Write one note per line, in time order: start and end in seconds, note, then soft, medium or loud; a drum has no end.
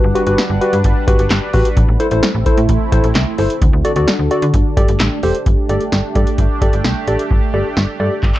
0.00 1.75 G3 medium
0.00 1.75 D4 medium
0.00 1.75 B4 medium
0.00 1.75 F#5 medium
0.04 0.13 G1 loud
0.15 0.22 F#4 medium
0.15 0.22 G4 medium
0.15 0.22 B4 medium
0.15 closed hi-hat medium
0.27 0.36 G1 medium
0.27 0.41 F#4 medium
0.27 0.41 G4 medium
0.27 0.41 B4 medium
0.27 closed hi-hat soft
0.38 snare loud
0.38 closed hi-hat medium
0.50 0.59 G1 loud
0.61 0.75 F#4 medium
0.61 0.75 G4 medium
0.61 0.75 B4 medium
0.61 closed hi-hat medium
0.73 0.82 G2 loud
0.73 closed hi-hat medium
0.84 0.94 G1 loud
0.84 kick medium
0.84 closed hi-hat medium
1.08 1.17 G1 loud
1.08 1.22 F#4 medium
1.08 1.22 G4 medium
1.08 1.22 B4 medium
1.08 kick loud
1.08 closed hi-hat medium
1.19 1.29 G1 loud
1.19 closed hi-hat medium
1.30 1.40 G1 medium
1.30 snare loud
1.30 clap medium
1.30 closed hi-hat medium
1.53 1.63 A1 medium
1.53 1.68 F#4 medium
1.53 1.68 G4 medium
1.53 1.68 B4 medium
1.53 kick medium
1.53 open hi-hat medium
1.65 closed hi-hat medium
1.77 1.86 A1 loud
1.77 3.60 A3 medium
1.77 3.60 C4 medium
1.77 3.60 E4 medium
1.77 kick loud
1.77 closed hi-hat medium
1.89 1.98 A1 loud
2.00 2.07 E4 medium
2.00 2.07 A4 medium
2.00 2.07 C5 loud
2.00 closed hi-hat medium
2.11 2.21 A1 loud
2.11 2.25 E4 medium
2.11 2.26 A4 medium
2.11 2.26 C5 medium
2.11 closed hi-hat soft
2.23 snare loud
2.23 closed hi-hat medium
2.35 2.44 A1 loud
2.46 2.60 E4 medium
2.46 2.60 A4 medium
2.46 2.60 C5 medium
2.46 kick medium
2.46 closed hi-hat medium
2.57 2.67 A2 loud
2.57 closed hi-hat medium
2.69 2.79 A1 medium
2.69 kick medium
2.69 closed hi-hat medium
2.92 3.02 A1 loud
2.92 3.06 E4 medium
2.92 3.06 A4 medium
2.92 3.06 C5 loud
2.92 kick medium
2.92 closed hi-hat medium
3.04 3.13 A1 loud
3.04 closed hi-hat medium
3.15 3.25 C2 loud
3.15 snare loud
3.15 clap medium
3.15 closed hi-hat medium
3.38 3.48 G1 loud
3.38 3.52 E4 medium
3.38 3.52 A4 medium
3.38 3.52 C5 medium
3.38 open hi-hat medium
3.50 closed hi-hat medium
3.62 3.71 D2 loud
3.62 4.53 D3 medium
3.62 5.44 D4 medium
3.62 4.53 F#4 medium
3.62 4.53 A4 medium
3.62 kick loud
3.62 closed hi-hat medium
3.73 3.83 D2 loud
3.85 3.92 F#4 medium
3.85 3.92 A4 medium
3.85 3.92 D5 medium
3.85 closed hi-hat medium
3.96 4.06 D2 loud
3.96 4.10 F#4 medium
3.96 4.10 A4 medium
3.96 4.10 D5 medium
3.96 closed hi-hat soft
4.08 snare loud
4.08 closed hi-hat medium
4.19 4.29 D2 medium
4.31 4.45 F#4 medium
4.31 4.45 A4 medium
4.31 4.45 D5 medium
4.31 closed hi-hat medium
4.42 4.52 D3 loud
4.42 closed hi-hat medium
4.54 4.63 G1 loud
4.54 5.45 A3 medium
4.54 5.45 G4 medium
4.54 kick medium
4.54 closed hi-hat medium
4.77 4.86 G1 loud
4.77 4.91 G4 medium
4.77 4.91 A4 medium
4.77 4.91 D5 medium
4.77 kick loud
4.77 closed hi-hat medium
4.88 4.98 G1 loud
4.88 closed hi-hat medium
5.00 5.09 A1 medium
5.00 snare loud
5.00 clap medium
5.00 closed hi-hat medium
5.23 5.33 E1 medium
5.23 5.37 G4 medium
5.23 5.37 A4 medium
5.23 5.37 C5 medium
5.23 open hi-hat medium
5.35 closed hi-hat medium
5.46 5.56 G1 loud
5.46 8.39 A3 medium
5.46 8.39 D4 medium
5.46 8.39 G4 medium
5.46 kick loud
5.46 closed hi-hat medium
5.69 5.79 G1 loud
5.69 5.83 G4 medium
5.69 5.83 A4 medium
5.69 5.83 D5 medium
5.69 closed hi-hat medium
5.81 closed hi-hat soft
5.92 6.02 G1 loud
5.92 snare loud
5.92 closed hi-hat medium
6.15 6.25 G2 loud
6.15 6.30 G4 medium
6.15 6.29 A4 medium
6.15 6.30 D5 medium
6.15 kick medium
6.15 closed hi-hat medium
6.27 closed hi-hat medium
6.38 6.48 G1 loud
6.38 kick medium
6.38 closed hi-hat medium
6.61 6.71 G1 loud
6.61 6.76 G4 medium
6.61 6.76 A4 medium
6.61 6.76 D5 medium
6.61 kick medium
6.61 closed hi-hat medium
6.73 6.83 G1 loud
6.73 closed hi-hat medium
6.84 6.94 B1 loud
6.84 snare loud
6.84 closed hi-hat medium
7.07 7.17 A1 medium
7.07 7.22 G4 medium
7.07 7.22 A4 medium
7.07 7.22 D5 medium
7.07 closed hi-hat medium
7.19 closed hi-hat medium
7.31 7.40 G1 loud
7.31 kick loud
7.54 7.63 G1 loud
7.54 7.68 G4 medium
7.54 7.68 A4 medium
7.54 7.68 D5 medium
7.77 7.86 G1 loud
7.77 snare loud
8.00 8.09 G2 loud
8.00 8.14 G4 medium
8.00 8.14 A4 medium
8.00 8.14 D5 medium
8.23 8.32 G1 medium
8.23 kick medium
8.23 clap medium
8.35 clap medium